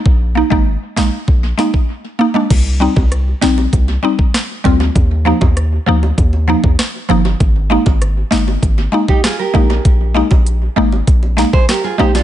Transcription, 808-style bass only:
X:1
M:4/4
L:1/16
Q:1/4=98
K:Cm
V:1 name="808-style bass" clef=bass
B,,,3 A,,,2 z B,,, z B,,,2 z6 | C,,3 C,,3 B,,,2 C,,2 z4 D,,2 | E,,3 E,,3 D,,2 E,,3 E,, z2 G,,,2 | A,,,3 A,,,3 G,,,2 A,,,2 z4 B,,,2 |
B,,,3 B,,,3 A,,,2 B,,,3 B,,, z2 B,,,2 |]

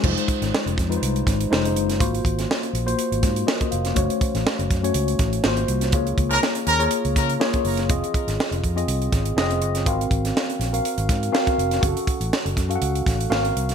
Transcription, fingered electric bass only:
X:1
M:4/4
L:1/16
Q:"Swing 16ths" 1/4=122
K:Fphr
V:1 name="Fingered electric bass" clef=bass
F,,, z2 A,,, z F,,, F,,2 C,,2 A,,,2 F,,,2 G,,,2 | A,,,2 A,,,2 z2 B,,,2 z A,,, A,,2 z2 F,,,2 | G,,, z2 =A,,, z G,,, G,,2 D,,2 A,,,2 _A,,,2 C,,2 | D,,2 D,,2 z2 E,,2 z D,, D,2 z2 G,,,2 |
F,,, z2 A,,, z F,,, F,,2 C,,2 A,,,2 F,,,2 G,,,2 | A,,,2 A,,,2 z2 B,,,2 z A,,, A,,2 z2 F,,,2 | G,,, z2 =A,,, z G,,, G,,2 D,,2 A,,,2 _A,,,2 C,,2 |]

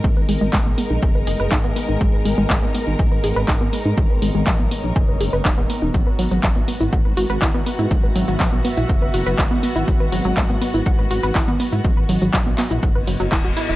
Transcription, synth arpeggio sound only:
X:1
M:4/4
L:1/16
Q:1/4=122
K:Elyd
V:1 name="Synth arpeggio sound"
G, B G, G, G, B, B, D g B G B D B, B, D | G, B G, G, G, B, B, D g B G B D B, B, D | G, B G, G, G, B, B, D g B G B D B, B, D | F, B F, F, F, B, B, E f B F B E B, B, E |
F, B F, F, F, B, B, E f B F B E B, B, E | F, B F, F, F, B, B, E f B F B E B, B, E | F, B F, F, F, B, B, E f B F, F, E F E E |]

